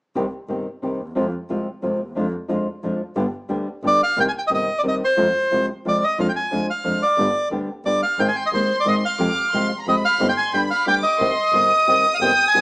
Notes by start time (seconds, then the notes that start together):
0.15 C2 C3 D#3 G3 C4 G4
0.49 G1 C3 D#3 G3 C4 G4
0.82 C2 C3 D#3 G3 C4 G4
1.00 D#2
1.15 F2 C3 F3 G#3 C4 F4
1.49 C2 C3 F3 G#3 C4 F4
1.82 F2 C3 F3 G#3 C4 F4
2.00 D#2
2.15 F2 F3 G#3 D4 F4
2.48 F2 F3 G#3 D4 F4
2.83 F2 F3 G#3 D4 F4
3.16 G1 D3 G3 B3 D4 G4
3.49 D2 D3 G3 B3 D4 G4
3.83 G1 D3 G3 B3 D4 G4
3.87 D5
4.03 F5
4.17 C2 C3 D#3 G3 C4 G4 G5
4.29 G#5
4.39 G5
4.47 G1 C3 D#3 G3 C4 G4 D#5
4.54 D#5
4.78 D5
4.83 C2 C3 D#3 G3 C4 G4
4.88 D#5
5.04 C5
5.17 F2 C3 F3 G#3 C4 F4
5.51 C2 C3 F3 G#3 C4 F4
5.85 F2 C3 F3 G#3 C4 F4 D5
6.04 D#5
6.18 F2 F3 G#3 D4 F4 F5
6.29 G5
6.36 G#5
6.51 F2 F3 G#3 D4 F4
6.70 F5
6.84 F2 F3 G#3 D4 F4
7.02 D5
7.18 G1 D3 G3 B3 D4 G4
7.51 D2 D3 G3 B3 D4 G4
7.85 G1 D3 G3 B3 D4 G4 D5
8.03 F5
8.18 G#1 D#3 G#3 C4 D#4 G#4 G5 C6
8.28 G#5
8.36 G5
8.46 D#5
8.52 D#2 D#3 G#3 C4 D#4 G#4 C5
8.80 D5
8.84 G#1 D#3 G#3 C4 D#4 G#4 D#5
9.05 F5
9.19 F2 C3 F3 G#3 C4 G4 D6
9.52 C2 C3 F3 G#3 C4 G4 C6
9.80 A#5
9.86 F2 C3 F3 G#3 C4 G4 D#5 B5
10.05 F5
10.20 G1 C3 G3 C4 D#4 G4 C6
10.29 G5
10.37 G#5
10.53 G1 D3 G3 B3 D4 G4 G5 B5
10.70 F5
10.86 D2 D3 G3 B3 D4 G4 G5 D6
11.03 D#5
11.19 C2 C3 D#3 G3 C4 G4 C6
11.53 G1 C3 D#3 G3 C4 G4 D#6
11.87 C2 C3 D#3 G3 C4 G4 D#5
12.14 F5
12.21 G1 C3 D#3 G3 C4 G4 G5
12.48 G#5
12.54 C2 C3 D#3 G3 C4 G4